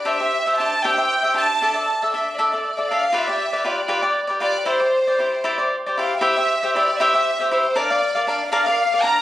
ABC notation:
X:1
M:6/8
L:1/16
Q:3/8=78
K:C
V:1 name="Violin section"
e4 a2 g4 a2- | a4 e2 d4 f2 | e4 d4 z2 d2 | c8 z2 f2 |
e4 d2 e4 c2 | d4 d2 f4 _b2 |]
V:2 name="Cavaquinho"
[DGce] [Gce] z [Gce] [DGce] z [DGce] [Gce] z [Gce] [DGce] z | [DAde] [Ade] z [Ade] [DAde] z [DAde] [Ade] z [Ade] [DAde] z | [FGBd] [GBd] z [GBd] [FGBd] z [FGBd] [GBd] z [GBd] [FGBd] z | [EGcd] [Gcd] z [Gcd] [EGcd] z [EGcd] [Gcd] z [Gcd] [EGcd] z |
[EGce] [Ge] z [Gce] [EGce] z [EGce] [Gce] z [Gce] [EGce] z | [D_Bdf] [Bdf] z [Bdf] [DBdf] z [DBdf] [Bdf] z [Bdf] [DBdf] z |]